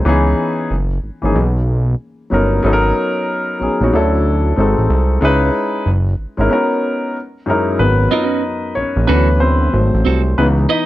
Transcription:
0.05 0.34 C#2 loud
0.05 0.70 E3 medium
0.05 0.70 B3 medium
0.05 0.70 C#4 medium
0.05 0.71 D#4 medium
0.05 0.71 G#4 loud
0.71 0.99 F#1 medium
1.03 1.11 G#1 soft
1.22 1.34 G#1 medium
1.22 1.34 E3 medium
1.22 1.34 A#3 medium
1.22 1.35 C#4 medium
1.22 1.35 D#4 medium
1.22 1.36 G#4 medium
1.35 1.95 B1 loud
2.30 2.61 G1 medium
2.30 2.59 F#3 medium
2.30 2.59 B3 medium
2.30 2.60 C#4 medium
2.30 2.60 D#4 medium
2.30 2.61 A#4 medium
2.63 2.93 G#1 loud
2.63 3.48 F#3 medium
2.63 3.48 B3 medium
2.63 3.49 C#4 medium
2.63 3.49 D#4 medium
2.63 2.73 A4 medium
2.73 3.53 A#4 loud
3.59 3.69 A#1 soft
3.59 3.77 F#3 medium
3.59 3.77 B3 medium
3.59 3.77 C#4 medium
3.59 3.78 D#4 medium
3.59 3.78 G#4 medium
3.80 3.91 A#1 medium
3.80 3.90 F#3 medium
3.80 3.93 B3 medium
3.80 3.91 C#4 medium
3.80 3.93 D#4 medium
3.80 3.94 F#4 medium
3.92 4.53 D2 medium
3.92 4.49 F#3 medium
3.92 4.49 C#4 medium
3.92 4.50 D4 medium
3.92 4.50 E4 medium
3.92 4.51 A4 medium
4.56 4.75 G#1 medium
4.56 5.13 G#3 medium
4.56 5.14 C4 medium
4.56 5.14 D#4 medium
4.56 5.15 F#4 medium
4.56 5.15 A4 medium
4.78 4.89 A1 medium
4.90 5.19 C2 loud
5.21 5.51 C#2 loud
5.21 5.85 G#3 medium
5.21 5.86 C#4 medium
5.21 5.86 D#4 medium
5.21 5.87 E4 medium
5.25 5.87 B4 loud
5.86 6.15 F#1 medium
6.18 6.26 G#1 soft
6.37 6.49 G#1 medium
6.37 6.50 G#3 medium
6.37 6.49 C#4 medium
6.37 6.50 D#4 medium
6.37 6.51 E4 medium
6.37 6.51 A#4 medium
6.49 7.06 B3 medium
6.49 7.07 C#4 medium
6.49 7.07 D#4 medium
6.49 7.08 F#4 medium
6.49 7.08 A#4 medium
7.46 7.75 F#2 medium
7.46 7.75 G#3 medium
7.46 7.76 C#4 medium
7.46 7.76 D#4 medium
7.46 7.76 E4 medium
7.46 7.77 A#4 medium
7.79 8.09 G#1 loud
7.79 9.04 F#3 medium
7.79 8.10 B3 medium
7.79 8.76 C#4 medium
7.79 9.05 A#4 medium
7.79 8.12 B4 medium
8.11 8.24 C4 medium
8.11 8.73 D#4 medium
8.11 8.25 F4 medium
8.11 8.25 A#4 medium
8.11 8.78 D#5 medium
8.24 8.42 C#4 medium
8.24 8.42 F#4 medium
8.24 8.43 B4 medium
8.75 8.84 A#1 medium
8.75 9.07 C#4 medium
8.75 9.09 C#5 medium
8.96 9.07 A#1 medium
9.07 9.69 D2 loud
9.07 9.70 E3 medium
9.07 9.70 F#3 medium
9.07 9.39 B3 medium
9.07 9.28 C#4 medium
9.07 9.70 C#4 medium
9.07 9.28 F#4 medium
9.07 9.28 A4 loud
9.07 9.41 B4 medium
9.40 9.73 C4 medium
9.40 10.01 C5 medium
9.73 9.91 G#1 loud
9.73 10.34 F#3 medium
9.73 10.34 A3 medium
9.73 10.35 C4 medium
9.94 10.04 A1 medium
10.05 10.35 C2 medium
10.05 10.21 C4 medium
10.05 10.21 F#4 medium
10.05 10.21 A4 medium
10.38 10.67 C#2 loud
10.38 10.86 E3 medium
10.38 10.46 B3 medium
10.38 10.70 D#4 medium
10.38 10.45 B4 medium
10.69 10.86 D#4 medium
10.69 10.86 E4 medium
10.69 10.86 B4 medium
10.69 10.86 D#5 medium
10.69 10.86 D#5 loud

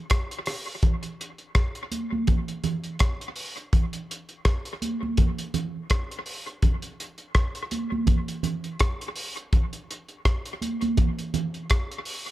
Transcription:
0.10 kick loud
0.10 cross-stick loud
0.10 closed hi-hat loud
0.31 closed hi-hat soft
0.46 cross-stick medium
0.46 open hi-hat medium
0.83 kick loud
0.83 closed hi-hat medium
0.83 low conga medium
1.03 closed hi-hat medium
1.21 closed hi-hat medium
1.38 closed hi-hat soft
1.55 kick loud
1.55 cross-stick loud
1.55 closed hi-hat medium
1.75 closed hi-hat soft
1.92 closed hi-hat medium
1.92 high conga soft
2.13 high conga medium
2.27 kick loud
2.27 closed hi-hat medium
2.27 low conga medium
2.48 closed hi-hat soft
2.64 closed hi-hat medium
2.64 low conga medium
2.84 closed hi-hat soft
2.99 kick loud
2.99 cross-stick loud
2.99 closed hi-hat loud
3.21 closed hi-hat soft
3.36 open hi-hat medium
3.57 closed hi-hat soft
3.73 kick loud
3.73 closed hi-hat medium
3.73 low conga medium
3.93 closed hi-hat medium
4.11 closed hi-hat medium
4.29 closed hi-hat soft
4.45 kick loud
4.45 cross-stick loud
4.45 closed hi-hat medium
4.65 closed hi-hat soft
4.82 closed hi-hat medium
4.82 high conga soft
5.03 high conga medium
5.17 kick loud
5.17 closed hi-hat medium
5.17 low conga medium
5.38 closed hi-hat soft
5.54 closed hi-hat medium
5.54 low conga medium
5.90 kick loud
5.90 cross-stick loud
5.90 closed hi-hat loud
6.11 closed hi-hat medium
6.26 open hi-hat medium
6.47 closed hi-hat soft
6.62 kick loud
6.62 closed hi-hat medium
6.62 low conga medium
6.82 closed hi-hat medium
7.00 closed hi-hat medium
7.18 closed hi-hat soft
7.35 kick loud
7.35 cross-stick loud
7.35 closed hi-hat medium
7.55 closed hi-hat soft
7.71 closed hi-hat medium
7.71 high conga soft
7.92 high conga medium
8.07 kick loud
8.07 closed hi-hat medium
8.07 low conga medium
8.28 closed hi-hat soft
8.43 closed hi-hat medium
8.43 low conga medium
8.64 closed hi-hat soft
8.80 kick loud
8.80 cross-stick loud
8.80 closed hi-hat loud
9.01 closed hi-hat soft
9.16 open hi-hat medium
9.37 closed hi-hat soft
9.53 kick loud
9.53 closed hi-hat medium
9.53 low conga medium
9.73 closed hi-hat medium
9.91 closed hi-hat medium
10.09 closed hi-hat soft
10.25 kick loud
10.25 cross-stick loud
10.25 closed hi-hat medium
10.45 closed hi-hat soft
10.62 closed hi-hat medium
10.62 high conga soft
10.81 closed hi-hat soft
10.81 high conga medium
10.97 kick loud
10.97 closed hi-hat medium
10.97 low conga medium
11.19 closed hi-hat soft
11.34 closed hi-hat medium
11.34 low conga medium
11.54 closed hi-hat soft
11.70 kick loud
11.70 cross-stick loud
11.70 closed hi-hat loud
11.91 closed hi-hat soft
12.05 open hi-hat medium

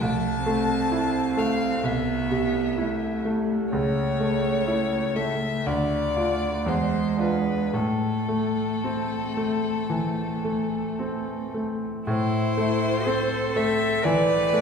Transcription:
0.00 1.81 C2 soft
0.00 0.44 A3 soft
0.00 1.40 A5 medium
0.44 1.20 A3 soft
0.44 1.86 C4 soft
0.92 1.66 E4 soft
1.37 2.12 A3 soft
1.37 1.87 F5 medium
1.84 3.68 C2 soft
1.84 2.81 B3 soft
1.84 3.26 E5 medium
2.31 3.07 C3 soft
2.78 3.73 A3 soft
2.78 3.53 E4 soft
3.25 3.72 A3 soft
3.73 5.62 C#2 soft
3.73 5.63 A3 soft
3.73 5.18 C#5 medium
4.20 4.97 A3 soft
4.68 5.46 E4 soft
5.16 5.66 A3 soft
5.16 5.68 E5 medium
5.65 6.63 D2 soft
5.65 6.67 A3 soft
5.65 6.69 D5 medium
6.16 6.63 D4 soft
6.16 6.62 F4 soft
6.66 7.70 E2 soft
6.66 7.74 G#3 soft
6.66 7.19 C5 medium
7.18 7.69 D4 soft
7.18 7.69 F4 soft
7.18 7.76 B4 soft
7.73 9.86 A2 soft
7.73 11.86 A3 soft
7.73 11.54 A4 soft
8.29 9.16 A3 soft
8.84 9.69 C4 soft
9.37 10.22 A3 soft
9.90 10.76 E3 soft
10.45 11.31 A3 soft
10.99 11.87 C4 soft
11.54 12.08 A3 soft
12.06 14.00 A2 medium
12.06 13.07 E4 medium
12.06 13.58 C5 medium
12.57 13.36 A3 soft
13.05 13.85 C4 soft
13.05 14.06 A4 medium
13.56 14.33 A3 soft
13.56 14.06 E5 medium
14.04 14.61 E3 soft
14.04 14.61 B4 medium
14.04 14.61 D5 medium
14.53 14.61 A3 soft

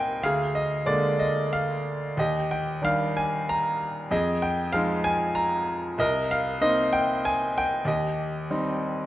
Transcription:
0.00 0.18 C2 medium
0.00 0.18 A#3 soft
0.00 0.18 C4 soft
0.00 0.19 D#4 soft
0.00 0.24 A#4 medium
0.00 0.25 D#5 medium
0.00 0.23 F5 medium
0.00 0.24 G5 medium
0.00 0.24 G#5 medium
0.23 2.14 D2 medium
0.23 1.16 G#4 medium
0.23 0.56 F5 medium
0.55 0.88 D#5 medium
0.86 2.14 D3 soft
0.86 2.13 G#3 soft
0.86 2.13 A#3 soft
0.86 1.16 D5 medium
1.19 1.53 D#5 medium
1.53 1.98 F5 medium
2.17 4.07 D#2 medium
2.17 3.12 G4 soft
2.17 2.49 D#5 medium
2.51 2.84 G5 medium
2.82 4.07 D#3 soft
2.82 4.07 G3 soft
2.82 4.08 D4 soft
2.82 3.17 F5 medium
3.17 3.49 G#5 medium
3.49 3.78 A#5 medium
4.11 5.95 F2 medium
4.11 5.02 G#4 soft
4.11 4.41 D#5 medium
4.42 4.72 G5 medium
4.73 5.95 F3 soft
4.73 5.95 G#3 soft
4.73 5.96 D#4 soft
4.73 5.06 F5 medium
5.04 5.34 G#5 medium
5.35 5.65 A#5 medium
5.98 7.82 C2 medium
5.98 6.90 A#4 medium
5.98 6.28 D#5 medium
6.31 6.63 F5 medium
6.61 7.83 A#3 soft
6.61 7.83 C4 soft
6.61 7.83 D#4 medium
6.61 6.91 D#5 medium
6.93 7.25 G5 medium
7.25 7.57 G#5 medium
7.58 7.89 G5 medium
7.85 9.06 D#2 medium
7.85 9.06 G4 soft
7.85 9.06 D#5 medium
8.50 9.06 G3 soft
8.50 9.06 C4 soft
8.50 9.06 D#4 soft

